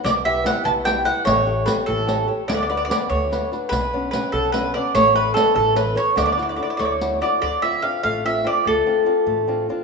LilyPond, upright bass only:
\new Staff \with { instrumentName = "Upright bass" } { \clef bass \time 6/8 \key d \major \tempo 4. = 98 b,,4. b,,4. | a,,4. a,,4. | d,4. d,4. | b,,4. b,,4. |
a,,4. a,,4. | d,4. d,4. | \key d \minor d,8 r4 a,,4. | d,8 r4 a,,4. | }